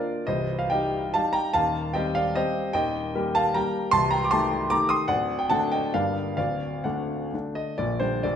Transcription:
Already playing: A#3 D4 F4 A#4 D5
0.27 C1 C2 C5 D#5
0.59 F5
0.70 G3 D#4 G4 D#5 G5
1.14 G3 D#4 G4 F5 A5
1.33 G5 A#5
1.53 D#1 D#2 F5 A5
1.94 G3 C4 G4 D#5 G5
2.15 D5 F5
2.35 G3 C4 G4 C5 D#5
2.73 D#1 D#2 D#5 G5
3.15 G3 A#3 G4
3.35 F5 A5
3.54 G3 A#3 G4 G5 A#5
3.91 C1 C2 A5 C6
4.11 G5 A#5
4.25 D6
4.31 D#3 A3 G4 A5 C6
4.70 D#3 A3 G4 A#5 D6
4.89 C6 D#6
5.08 D1 D2 D5 F#5
5.39 G5
5.50 D3 A3 D4 F#5 A5
5.72 D#5 G5
5.94 G1 G2 D3 A#3 D4 D5 F5
6.37 D1 D2 D5 F5
6.84 D3 A3 D4 D5 F#5
7.34 D3 A3 D4
7.55 D#5
7.78 A#1 A#2 D5
8.00 D3 G3 D4 C5
8.23 A#1 A#2 D5

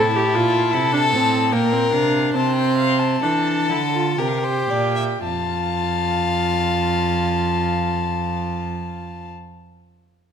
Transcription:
Already playing: E4 A5
0.00 A2
0.16 G4
0.35 A#2 F4
0.73 C3 E4 A4
0.93 D4
1.13 A2 C4
1.52 A#2 A#3 A#4 G5
1.73 C4
1.92 C3 D4 F5
2.34 C3 C4 C5 A5
2.55 G5
2.77 F5
2.99 A5
3.23 E3 D4 A4
3.69 D3 E4
3.94 F4
4.18 C3 G4 A#4 G5
4.28 F5
4.38 G5
4.44 C5
4.70 A#2 D5
4.96 E5
5.23 F2 F4 F5 A5

